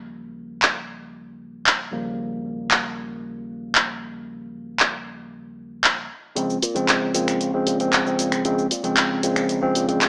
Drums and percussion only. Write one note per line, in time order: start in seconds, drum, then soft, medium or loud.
0.62 clap loud
1.67 clap loud
2.71 clap loud
3.75 clap loud
4.80 clap loud
5.84 clap loud
6.36 closed hi-hat medium
6.36 shaker soft
6.50 shaker soft
6.62 open hi-hat loud
6.62 shaker medium
6.76 closed hi-hat soft
6.76 shaker soft
6.89 clap loud
6.89 closed hi-hat medium
6.89 shaker soft
7.14 open hi-hat loud
7.14 shaker medium
7.28 finger snap medium
7.28 closed hi-hat soft
7.28 shaker soft
7.41 closed hi-hat medium
7.41 shaker soft
7.67 open hi-hat medium
7.67 shaker medium
7.80 closed hi-hat soft
7.80 shaker soft
7.93 clap loud
7.93 closed hi-hat medium
7.93 shaker soft
8.07 shaker soft
8.19 open hi-hat loud
8.19 shaker medium
8.32 finger snap medium
8.32 closed hi-hat medium
8.32 shaker soft
8.45 closed hi-hat medium
8.45 shaker soft
8.59 shaker soft
8.71 open hi-hat loud
8.71 shaker medium
8.84 closed hi-hat soft
8.84 shaker soft
8.97 clap loud
8.97 closed hi-hat medium
8.97 shaker soft
9.23 open hi-hat loud
9.23 shaker medium
9.36 finger snap medium
9.36 closed hi-hat soft
9.36 shaker soft
9.49 closed hi-hat medium
9.49 shaker soft
9.75 open hi-hat loud
9.75 shaker medium
9.89 closed hi-hat medium
9.89 shaker soft
10.02 clap loud
10.02 closed hi-hat medium
10.02 shaker soft